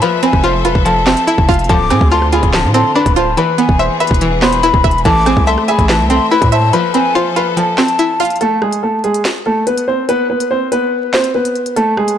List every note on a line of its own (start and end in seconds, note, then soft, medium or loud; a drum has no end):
0.00 1.68 F3 medium
0.00 0.84 F3 loud
0.00 1.68 A4 loud
0.00 0.19 B4 medium
0.00 1.66 E5 medium
0.00 0.18 B5 loud
0.00 closed hi-hat medium
0.22 1.05 C4 medium
0.22 0.40 B4 medium
0.22 0.42 G#5 medium
0.22 0.39 B5 medium
0.22 closed hi-hat medium
0.33 0.66 F1 loud
0.33 kick loud
0.44 0.64 F4 loud
0.44 0.60 C5 medium
0.44 0.60 C6 medium
0.65 0.75 E1 loud
0.65 1.47 F4 medium
0.65 0.81 B4 medium
0.65 0.81 B5 medium
0.65 closed hi-hat medium
0.75 1.15 F1 loud
0.75 kick medium
0.85 1.68 F3 medium
0.85 1.45 A4 medium
0.85 1.45 A5 medium
0.85 closed hi-hat medium
1.06 1.69 C4 medium
1.06 1.66 A5 medium
1.06 cross-stick loud
1.06 snare loud
1.06 clap loud
1.17 closed hi-hat medium
1.27 1.69 E4 loud
1.27 closed hi-hat medium
1.38 1.48 F1 loud
1.38 kick loud
1.48 1.69 F1 loud
1.48 1.70 F4 medium
1.48 1.65 F4 medium
1.48 1.65 F5 medium
1.48 kick loud
1.48 closed hi-hat medium
1.48 open hi-hat soft
1.54 closed hi-hat medium
1.59 closed hi-hat soft
1.64 closed hi-hat soft
1.69 1.92 D1 loud
1.69 3.36 D3 medium
1.69 2.52 F3 medium
1.69 3.36 C4 medium
1.69 3.36 F4 medium
1.69 1.86 A4 medium
1.69 1.86 A5 loud
1.69 2.09 D6 loud
1.69 kick loud
1.69 closed hi-hat medium
1.90 2.00 A2 loud
1.90 2.73 C4 medium
1.90 2.07 G#4 medium
1.90 2.07 G#5 medium
1.90 cross-stick medium
1.90 closed hi-hat medium
2.01 2.41 D2 loud
2.01 kick loud
2.11 2.31 F4 medium
2.11 2.28 A4 medium
2.11 2.28 A5 medium
2.11 2.31 C6 loud
2.22 cross-stick medium
2.32 3.15 F4 medium
2.32 2.49 G#4 medium
2.32 2.49 G#5 medium
2.32 2.52 B5 medium
2.32 closed hi-hat medium
2.43 2.66 D1 loud
2.43 kick medium
2.43 closed hi-hat soft
2.53 3.37 F3 medium
2.53 2.73 A5 medium
2.53 snare loud
2.53 clap medium
2.64 2.84 A2 loud
2.74 3.37 C4 medium
2.74 2.91 A4 medium
2.74 2.91 A5 medium
2.74 2.94 C6 medium
2.74 closed hi-hat medium
2.95 3.37 D4 medium
2.95 3.12 B4 medium
2.95 3.15 B5 medium
2.95 3.12 B5 medium
3.06 3.36 D1 loud
3.06 kick loud
3.06 closed hi-hat medium
3.16 3.37 F4 medium
3.16 3.33 C5 medium
3.16 3.36 A5 medium
3.16 3.33 C6 medium
3.16 closed hi-hat medium
3.37 4.20 E3 medium
3.37 5.04 E3 medium
3.37 5.04 B3 medium
3.37 5.04 G#4 medium
3.37 3.54 B4 medium
3.37 3.54 B5 loud
3.37 closed hi-hat medium
3.58 4.41 B3 medium
3.58 3.75 B4 medium
3.58 3.78 G#5 medium
3.58 3.75 B5 medium
3.58 closed hi-hat medium
3.69 3.89 E1 loud
3.69 kick loud
3.79 3.96 C5 medium
3.79 3.99 E5 loud
3.79 3.96 C6 medium
4.00 4.40 B4 medium
4.00 4.83 E5 medium
4.00 4.40 B5 medium
4.00 closed hi-hat medium
4.07 4.71 E1 loud
4.07 kick medium
4.07 closed hi-hat medium
4.14 closed hi-hat medium
4.21 5.04 E3 medium
4.21 closed hi-hat medium
4.42 5.05 B3 medium
4.42 4.59 C5 medium
4.42 5.01 B5 medium
4.42 4.58 C6 medium
4.42 cross-stick loud
4.42 snare loud
4.42 clap medium
4.53 closed hi-hat medium
4.63 5.05 E4 loud
4.63 5.03 B4 medium
4.63 5.03 B5 medium
4.63 closed hi-hat medium
4.74 4.84 E1 loud
4.74 kick loud
4.84 5.04 E1 loud
4.84 5.05 E5 medium
4.84 kick loud
4.84 closed hi-hat medium
4.91 closed hi-hat soft
4.98 closed hi-hat soft
5.05 5.35 A1 loud
5.05 5.88 E3 loud
5.05 6.71 A3 medium
5.05 6.71 C4 medium
5.05 5.22 A4 medium
5.05 8.38 E5 medium
5.05 5.21 A5 loud
5.05 5.45 D6 loud
5.05 kick loud
5.05 closed hi-hat medium
5.26 6.09 C4 medium
5.26 5.43 G#4 medium
5.26 5.42 G#5 medium
5.26 cross-stick loud
5.26 closed hi-hat medium
5.37 5.57 C2 loud
5.37 kick loud
5.47 5.64 A4 medium
5.47 5.67 E5 loud
5.47 5.63 A5 medium
5.47 5.67 C6 medium
5.58 cross-stick medium
5.68 5.85 G#4 medium
5.68 6.51 E5 medium
5.68 5.84 G#5 medium
5.68 5.88 B5 medium
5.68 closed hi-hat medium
5.79 6.01 A1 loud
5.79 kick medium
5.79 closed hi-hat soft
5.89 6.73 E3 medium
5.89 6.09 A5 medium
5.89 snare loud
5.89 clap medium
5.99 6.19 C2 loud
6.10 6.73 C4 medium
6.10 6.27 A4 medium
6.10 6.26 A5 medium
6.10 6.30 C6 medium
6.10 closed hi-hat medium
6.31 6.73 E4 medium
6.31 6.48 B4 medium
6.31 6.51 B5 medium
6.31 6.47 B5 medium
6.42 6.72 A2 loud
6.42 kick loud
6.42 closed hi-hat medium
6.52 6.69 C5 medium
6.52 6.73 E5 medium
6.52 6.72 A5 medium
6.52 6.68 C6 medium
6.52 closed hi-hat medium
6.73 8.39 F3 medium
6.73 7.55 F3 loud
6.73 8.39 A4 medium
6.73 6.90 B4 medium
6.73 6.89 B5 loud
6.73 closed hi-hat medium
6.94 7.77 C4 medium
6.94 7.11 B4 medium
6.94 7.14 G#5 medium
6.94 7.10 B5 medium
6.94 closed hi-hat medium
7.15 7.35 F4 loud
7.15 7.32 C5 medium
7.15 7.31 C6 medium
7.36 8.19 F4 medium
7.36 7.53 B4 medium
7.36 7.52 B5 medium
7.36 closed hi-hat medium
7.57 8.41 F3 medium
7.57 8.17 A4 medium
7.57 8.16 A5 medium
7.57 closed hi-hat medium
7.78 8.41 C4 medium
7.78 8.37 A5 medium
7.78 cross-stick loud
7.78 snare loud
7.78 clap loud
7.88 closed hi-hat medium
7.99 8.41 E4 medium
7.99 closed hi-hat medium
8.20 8.41 F4 medium
8.20 8.37 F4 medium
8.20 8.36 F5 medium
8.20 closed hi-hat medium
8.20 open hi-hat soft
8.25 closed hi-hat medium
8.30 closed hi-hat soft
8.36 closed hi-hat soft
8.41 8.58 A3 medium
8.41 8.57 A4 loud
8.41 closed hi-hat medium
8.62 8.79 G#3 medium
8.62 8.78 G#4 medium
8.62 cross-stick medium
8.72 closed hi-hat medium
8.83 9.00 A3 medium
8.83 8.99 A4 medium
9.04 9.21 G#3 medium
9.04 9.20 G#4 medium
9.04 closed hi-hat soft
9.14 closed hi-hat medium
9.25 snare loud
9.25 clap medium
9.25 closed hi-hat medium
9.46 9.63 A3 medium
9.46 9.62 A4 medium
9.67 9.83 B3 medium
9.67 9.83 B4 medium
9.67 closed hi-hat medium
9.78 closed hi-hat medium
9.88 10.05 C4 medium
9.88 10.04 C5 medium
10.09 10.26 B3 medium
10.09 10.25 B4 loud
10.09 closed hi-hat medium
10.30 10.46 B3 medium
10.30 10.46 B4 medium
10.40 closed hi-hat medium
10.51 10.67 C4 medium
10.51 10.67 C5 medium
10.72 11.12 B3 medium
10.72 11.11 B4 medium
10.72 closed hi-hat medium
11.13 11.30 C4 medium
11.13 11.30 C5 medium
11.13 snare loud
11.13 clap medium
11.24 closed hi-hat medium
11.35 11.74 B3 medium
11.35 11.74 B4 medium
11.45 closed hi-hat medium
11.55 closed hi-hat soft
11.66 closed hi-hat medium
11.76 11.93 A3 medium
11.76 11.93 A4 medium
11.76 closed hi-hat medium
11.97 12.14 G#3 medium
11.97 12.14 G#4 medium
11.97 cross-stick medium
12.08 closed hi-hat medium